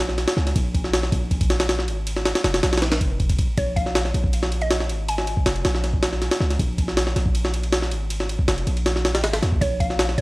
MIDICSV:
0, 0, Header, 1, 4, 480
1, 0, Start_track
1, 0, Key_signature, -5, "minor"
1, 0, Tempo, 377358
1, 707, Time_signature, 4, 2, 24, 8
1, 12988, End_track
2, 0, Start_track
2, 0, Title_t, "Synth pluck"
2, 0, Program_c, 0, 84
2, 4548, Note_on_c, 0, 73, 91
2, 4765, Note_off_c, 0, 73, 0
2, 4786, Note_on_c, 0, 77, 91
2, 5076, Note_off_c, 0, 77, 0
2, 5872, Note_on_c, 0, 75, 92
2, 6158, Note_off_c, 0, 75, 0
2, 6470, Note_on_c, 0, 80, 92
2, 7142, Note_off_c, 0, 80, 0
2, 12226, Note_on_c, 0, 73, 94
2, 12444, Note_off_c, 0, 73, 0
2, 12467, Note_on_c, 0, 77, 91
2, 12757, Note_off_c, 0, 77, 0
2, 12946, Note_on_c, 0, 73, 93
2, 12988, Note_off_c, 0, 73, 0
2, 12988, End_track
3, 0, Start_track
3, 0, Title_t, "808-style bass"
3, 0, Program_c, 1, 38
3, 0, Note_on_c, 1, 34, 89
3, 331, Note_off_c, 1, 34, 0
3, 467, Note_on_c, 1, 37, 81
3, 684, Note_off_c, 1, 37, 0
3, 709, Note_on_c, 1, 34, 98
3, 1410, Note_off_c, 1, 34, 0
3, 1428, Note_on_c, 1, 34, 85
3, 2385, Note_on_c, 1, 32, 89
3, 2404, Note_off_c, 1, 34, 0
3, 2970, Note_off_c, 1, 32, 0
3, 3107, Note_on_c, 1, 29, 92
3, 3324, Note_off_c, 1, 29, 0
3, 3350, Note_on_c, 1, 34, 87
3, 3828, Note_on_c, 1, 29, 97
3, 3847, Note_off_c, 1, 34, 0
3, 4289, Note_off_c, 1, 29, 0
3, 4548, Note_on_c, 1, 34, 99
3, 5249, Note_off_c, 1, 34, 0
3, 5269, Note_on_c, 1, 34, 87
3, 6228, Note_on_c, 1, 32, 88
3, 6248, Note_off_c, 1, 34, 0
3, 6812, Note_off_c, 1, 32, 0
3, 6948, Note_on_c, 1, 29, 89
3, 7164, Note_off_c, 1, 29, 0
3, 7184, Note_on_c, 1, 34, 89
3, 8010, Note_off_c, 1, 34, 0
3, 8146, Note_on_c, 1, 37, 83
3, 8364, Note_off_c, 1, 37, 0
3, 8387, Note_on_c, 1, 34, 100
3, 9089, Note_off_c, 1, 34, 0
3, 9107, Note_on_c, 1, 34, 84
3, 10067, Note_on_c, 1, 32, 90
3, 10086, Note_off_c, 1, 34, 0
3, 10651, Note_off_c, 1, 32, 0
3, 10787, Note_on_c, 1, 29, 92
3, 11004, Note_off_c, 1, 29, 0
3, 11027, Note_on_c, 1, 34, 86
3, 11746, Note_on_c, 1, 32, 90
3, 11765, Note_off_c, 1, 34, 0
3, 11964, Note_off_c, 1, 32, 0
3, 11988, Note_on_c, 1, 39, 82
3, 12205, Note_off_c, 1, 39, 0
3, 12228, Note_on_c, 1, 34, 98
3, 12929, Note_off_c, 1, 34, 0
3, 12947, Note_on_c, 1, 34, 90
3, 12988, Note_off_c, 1, 34, 0
3, 12988, End_track
4, 0, Start_track
4, 0, Title_t, "Drums"
4, 112, Note_on_c, 9, 38, 38
4, 227, Note_off_c, 9, 38, 0
4, 227, Note_on_c, 9, 38, 35
4, 227, Note_on_c, 9, 51, 64
4, 351, Note_off_c, 9, 38, 0
4, 351, Note_off_c, 9, 51, 0
4, 351, Note_on_c, 9, 38, 109
4, 351, Note_on_c, 9, 51, 81
4, 469, Note_off_c, 9, 38, 0
4, 469, Note_on_c, 9, 38, 38
4, 478, Note_off_c, 9, 51, 0
4, 595, Note_off_c, 9, 38, 0
4, 595, Note_on_c, 9, 38, 35
4, 595, Note_on_c, 9, 51, 65
4, 708, Note_on_c, 9, 36, 115
4, 709, Note_off_c, 9, 51, 0
4, 709, Note_on_c, 9, 51, 92
4, 722, Note_off_c, 9, 38, 0
4, 835, Note_off_c, 9, 36, 0
4, 836, Note_off_c, 9, 51, 0
4, 948, Note_on_c, 9, 36, 93
4, 949, Note_on_c, 9, 51, 67
4, 1073, Note_on_c, 9, 38, 36
4, 1075, Note_off_c, 9, 36, 0
4, 1076, Note_off_c, 9, 51, 0
4, 1189, Note_off_c, 9, 38, 0
4, 1189, Note_on_c, 9, 38, 123
4, 1189, Note_on_c, 9, 51, 95
4, 1314, Note_off_c, 9, 38, 0
4, 1314, Note_on_c, 9, 38, 45
4, 1317, Note_off_c, 9, 51, 0
4, 1428, Note_on_c, 9, 36, 102
4, 1429, Note_on_c, 9, 51, 79
4, 1441, Note_off_c, 9, 38, 0
4, 1555, Note_off_c, 9, 36, 0
4, 1556, Note_off_c, 9, 51, 0
4, 1667, Note_on_c, 9, 36, 91
4, 1667, Note_on_c, 9, 51, 65
4, 1792, Note_off_c, 9, 36, 0
4, 1792, Note_off_c, 9, 51, 0
4, 1792, Note_on_c, 9, 36, 102
4, 1792, Note_on_c, 9, 51, 84
4, 1909, Note_off_c, 9, 51, 0
4, 1909, Note_on_c, 9, 38, 105
4, 1909, Note_on_c, 9, 51, 78
4, 1919, Note_off_c, 9, 36, 0
4, 2034, Note_off_c, 9, 38, 0
4, 2034, Note_off_c, 9, 51, 0
4, 2034, Note_on_c, 9, 38, 108
4, 2034, Note_on_c, 9, 51, 83
4, 2151, Note_off_c, 9, 38, 0
4, 2151, Note_off_c, 9, 51, 0
4, 2151, Note_on_c, 9, 38, 104
4, 2151, Note_on_c, 9, 51, 83
4, 2275, Note_off_c, 9, 38, 0
4, 2275, Note_on_c, 9, 38, 42
4, 2278, Note_off_c, 9, 51, 0
4, 2391, Note_on_c, 9, 51, 68
4, 2402, Note_off_c, 9, 38, 0
4, 2518, Note_off_c, 9, 51, 0
4, 2630, Note_on_c, 9, 51, 91
4, 2754, Note_on_c, 9, 38, 49
4, 2757, Note_off_c, 9, 51, 0
4, 2869, Note_off_c, 9, 38, 0
4, 2869, Note_on_c, 9, 38, 102
4, 2869, Note_on_c, 9, 51, 77
4, 2994, Note_off_c, 9, 38, 0
4, 2994, Note_off_c, 9, 51, 0
4, 2994, Note_on_c, 9, 38, 104
4, 2994, Note_on_c, 9, 51, 81
4, 3108, Note_off_c, 9, 38, 0
4, 3108, Note_off_c, 9, 51, 0
4, 3108, Note_on_c, 9, 38, 109
4, 3108, Note_on_c, 9, 51, 79
4, 3232, Note_off_c, 9, 38, 0
4, 3232, Note_off_c, 9, 51, 0
4, 3232, Note_on_c, 9, 38, 109
4, 3232, Note_on_c, 9, 51, 80
4, 3347, Note_off_c, 9, 38, 0
4, 3347, Note_off_c, 9, 51, 0
4, 3347, Note_on_c, 9, 38, 108
4, 3347, Note_on_c, 9, 51, 82
4, 3470, Note_off_c, 9, 38, 0
4, 3470, Note_off_c, 9, 51, 0
4, 3470, Note_on_c, 9, 38, 87
4, 3470, Note_on_c, 9, 51, 70
4, 3530, Note_off_c, 9, 38, 0
4, 3530, Note_off_c, 9, 51, 0
4, 3530, Note_on_c, 9, 38, 91
4, 3530, Note_on_c, 9, 51, 70
4, 3588, Note_off_c, 9, 38, 0
4, 3588, Note_off_c, 9, 51, 0
4, 3588, Note_on_c, 9, 38, 106
4, 3588, Note_on_c, 9, 51, 84
4, 3710, Note_off_c, 9, 38, 0
4, 3710, Note_off_c, 9, 51, 0
4, 3710, Note_on_c, 9, 38, 105
4, 3710, Note_on_c, 9, 51, 83
4, 3828, Note_off_c, 9, 51, 0
4, 3828, Note_on_c, 9, 51, 78
4, 3829, Note_on_c, 9, 36, 95
4, 3837, Note_off_c, 9, 38, 0
4, 3955, Note_off_c, 9, 51, 0
4, 3956, Note_off_c, 9, 36, 0
4, 4067, Note_on_c, 9, 51, 64
4, 4068, Note_on_c, 9, 36, 92
4, 4190, Note_off_c, 9, 51, 0
4, 4190, Note_on_c, 9, 51, 80
4, 4192, Note_off_c, 9, 36, 0
4, 4192, Note_on_c, 9, 36, 100
4, 4306, Note_off_c, 9, 51, 0
4, 4306, Note_on_c, 9, 51, 81
4, 4309, Note_off_c, 9, 36, 0
4, 4309, Note_on_c, 9, 36, 102
4, 4433, Note_off_c, 9, 51, 0
4, 4436, Note_off_c, 9, 36, 0
4, 4548, Note_on_c, 9, 51, 90
4, 4549, Note_on_c, 9, 36, 110
4, 4675, Note_off_c, 9, 51, 0
4, 4677, Note_off_c, 9, 36, 0
4, 4789, Note_on_c, 9, 36, 92
4, 4789, Note_on_c, 9, 51, 66
4, 4913, Note_on_c, 9, 38, 37
4, 4916, Note_off_c, 9, 51, 0
4, 4917, Note_off_c, 9, 36, 0
4, 5028, Note_off_c, 9, 38, 0
4, 5028, Note_on_c, 9, 38, 123
4, 5028, Note_on_c, 9, 51, 94
4, 5153, Note_off_c, 9, 38, 0
4, 5153, Note_on_c, 9, 38, 42
4, 5155, Note_off_c, 9, 51, 0
4, 5271, Note_on_c, 9, 51, 71
4, 5280, Note_off_c, 9, 38, 0
4, 5393, Note_on_c, 9, 36, 97
4, 5399, Note_off_c, 9, 51, 0
4, 5509, Note_on_c, 9, 51, 91
4, 5520, Note_off_c, 9, 36, 0
4, 5631, Note_on_c, 9, 38, 56
4, 5636, Note_off_c, 9, 51, 0
4, 5747, Note_on_c, 9, 51, 67
4, 5758, Note_off_c, 9, 38, 0
4, 5869, Note_off_c, 9, 51, 0
4, 5869, Note_on_c, 9, 51, 45
4, 5986, Note_off_c, 9, 51, 0
4, 5986, Note_on_c, 9, 38, 120
4, 5986, Note_on_c, 9, 51, 93
4, 6111, Note_off_c, 9, 38, 0
4, 6111, Note_on_c, 9, 38, 43
4, 6113, Note_off_c, 9, 51, 0
4, 6226, Note_on_c, 9, 51, 70
4, 6238, Note_off_c, 9, 38, 0
4, 6353, Note_off_c, 9, 51, 0
4, 6468, Note_on_c, 9, 51, 94
4, 6592, Note_on_c, 9, 38, 49
4, 6595, Note_off_c, 9, 51, 0
4, 6706, Note_on_c, 9, 51, 67
4, 6719, Note_off_c, 9, 38, 0
4, 6831, Note_on_c, 9, 36, 98
4, 6834, Note_off_c, 9, 51, 0
4, 6946, Note_on_c, 9, 38, 121
4, 6946, Note_on_c, 9, 51, 92
4, 6958, Note_off_c, 9, 36, 0
4, 7069, Note_off_c, 9, 51, 0
4, 7069, Note_on_c, 9, 51, 46
4, 7073, Note_off_c, 9, 38, 0
4, 7184, Note_off_c, 9, 51, 0
4, 7184, Note_on_c, 9, 38, 105
4, 7184, Note_on_c, 9, 51, 83
4, 7310, Note_off_c, 9, 38, 0
4, 7310, Note_on_c, 9, 38, 38
4, 7312, Note_off_c, 9, 51, 0
4, 7425, Note_off_c, 9, 38, 0
4, 7425, Note_on_c, 9, 38, 34
4, 7425, Note_on_c, 9, 51, 62
4, 7550, Note_on_c, 9, 36, 92
4, 7552, Note_off_c, 9, 38, 0
4, 7552, Note_off_c, 9, 51, 0
4, 7666, Note_on_c, 9, 38, 110
4, 7666, Note_on_c, 9, 51, 80
4, 7677, Note_off_c, 9, 36, 0
4, 7791, Note_off_c, 9, 38, 0
4, 7791, Note_on_c, 9, 38, 39
4, 7793, Note_off_c, 9, 51, 0
4, 7907, Note_off_c, 9, 38, 0
4, 7907, Note_on_c, 9, 38, 36
4, 7907, Note_on_c, 9, 51, 64
4, 8031, Note_off_c, 9, 38, 0
4, 8031, Note_off_c, 9, 51, 0
4, 8031, Note_on_c, 9, 38, 105
4, 8031, Note_on_c, 9, 51, 84
4, 8148, Note_off_c, 9, 38, 0
4, 8148, Note_on_c, 9, 38, 38
4, 8158, Note_off_c, 9, 51, 0
4, 8273, Note_off_c, 9, 38, 0
4, 8273, Note_on_c, 9, 38, 34
4, 8273, Note_on_c, 9, 51, 64
4, 8388, Note_off_c, 9, 51, 0
4, 8388, Note_on_c, 9, 36, 113
4, 8388, Note_on_c, 9, 51, 89
4, 8400, Note_off_c, 9, 38, 0
4, 8515, Note_off_c, 9, 36, 0
4, 8516, Note_off_c, 9, 51, 0
4, 8627, Note_on_c, 9, 36, 94
4, 8627, Note_on_c, 9, 51, 69
4, 8752, Note_on_c, 9, 38, 38
4, 8755, Note_off_c, 9, 36, 0
4, 8755, Note_off_c, 9, 51, 0
4, 8866, Note_off_c, 9, 38, 0
4, 8866, Note_on_c, 9, 38, 119
4, 8866, Note_on_c, 9, 51, 92
4, 8991, Note_off_c, 9, 38, 0
4, 8991, Note_on_c, 9, 38, 44
4, 8993, Note_off_c, 9, 51, 0
4, 9108, Note_off_c, 9, 38, 0
4, 9108, Note_on_c, 9, 38, 39
4, 9108, Note_on_c, 9, 51, 71
4, 9231, Note_on_c, 9, 36, 96
4, 9235, Note_off_c, 9, 38, 0
4, 9235, Note_off_c, 9, 51, 0
4, 9346, Note_on_c, 9, 51, 88
4, 9359, Note_off_c, 9, 36, 0
4, 9472, Note_on_c, 9, 38, 53
4, 9473, Note_off_c, 9, 51, 0
4, 9586, Note_on_c, 9, 51, 68
4, 9599, Note_off_c, 9, 38, 0
4, 9710, Note_off_c, 9, 51, 0
4, 9710, Note_on_c, 9, 51, 47
4, 9826, Note_off_c, 9, 51, 0
4, 9826, Note_on_c, 9, 38, 121
4, 9826, Note_on_c, 9, 51, 95
4, 9951, Note_off_c, 9, 38, 0
4, 9951, Note_on_c, 9, 38, 42
4, 9953, Note_off_c, 9, 51, 0
4, 10067, Note_on_c, 9, 51, 71
4, 10078, Note_off_c, 9, 38, 0
4, 10194, Note_off_c, 9, 51, 0
4, 10307, Note_on_c, 9, 51, 89
4, 10433, Note_on_c, 9, 38, 48
4, 10434, Note_off_c, 9, 51, 0
4, 10549, Note_on_c, 9, 51, 69
4, 10560, Note_off_c, 9, 38, 0
4, 10672, Note_on_c, 9, 36, 93
4, 10677, Note_off_c, 9, 51, 0
4, 10787, Note_on_c, 9, 38, 121
4, 10787, Note_on_c, 9, 51, 93
4, 10799, Note_off_c, 9, 36, 0
4, 10911, Note_off_c, 9, 51, 0
4, 10911, Note_on_c, 9, 51, 45
4, 10914, Note_off_c, 9, 38, 0
4, 11028, Note_off_c, 9, 51, 0
4, 11028, Note_on_c, 9, 51, 70
4, 11153, Note_off_c, 9, 51, 0
4, 11153, Note_on_c, 9, 51, 47
4, 11269, Note_off_c, 9, 51, 0
4, 11269, Note_on_c, 9, 38, 102
4, 11269, Note_on_c, 9, 51, 80
4, 11395, Note_off_c, 9, 38, 0
4, 11395, Note_on_c, 9, 38, 40
4, 11396, Note_off_c, 9, 51, 0
4, 11510, Note_off_c, 9, 38, 0
4, 11510, Note_on_c, 9, 38, 106
4, 11510, Note_on_c, 9, 51, 76
4, 11634, Note_off_c, 9, 38, 0
4, 11634, Note_off_c, 9, 51, 0
4, 11634, Note_on_c, 9, 38, 108
4, 11634, Note_on_c, 9, 51, 81
4, 11749, Note_off_c, 9, 38, 0
4, 11749, Note_off_c, 9, 51, 0
4, 11749, Note_on_c, 9, 38, 104
4, 11749, Note_on_c, 9, 51, 82
4, 11872, Note_off_c, 9, 38, 0
4, 11872, Note_off_c, 9, 51, 0
4, 11872, Note_on_c, 9, 38, 110
4, 11872, Note_on_c, 9, 51, 82
4, 11990, Note_off_c, 9, 38, 0
4, 11990, Note_off_c, 9, 51, 0
4, 11990, Note_on_c, 9, 38, 50
4, 11990, Note_on_c, 9, 51, 71
4, 12113, Note_on_c, 9, 36, 99
4, 12117, Note_off_c, 9, 38, 0
4, 12117, Note_off_c, 9, 51, 0
4, 12229, Note_off_c, 9, 36, 0
4, 12229, Note_on_c, 9, 36, 114
4, 12230, Note_on_c, 9, 51, 92
4, 12356, Note_off_c, 9, 36, 0
4, 12357, Note_off_c, 9, 51, 0
4, 12469, Note_on_c, 9, 36, 92
4, 12470, Note_on_c, 9, 51, 68
4, 12594, Note_on_c, 9, 38, 37
4, 12596, Note_off_c, 9, 36, 0
4, 12597, Note_off_c, 9, 51, 0
4, 12709, Note_off_c, 9, 38, 0
4, 12709, Note_on_c, 9, 38, 121
4, 12709, Note_on_c, 9, 51, 92
4, 12834, Note_off_c, 9, 38, 0
4, 12834, Note_on_c, 9, 38, 44
4, 12836, Note_off_c, 9, 51, 0
4, 12948, Note_on_c, 9, 51, 70
4, 12961, Note_off_c, 9, 38, 0
4, 12988, Note_off_c, 9, 51, 0
4, 12988, End_track
0, 0, End_of_file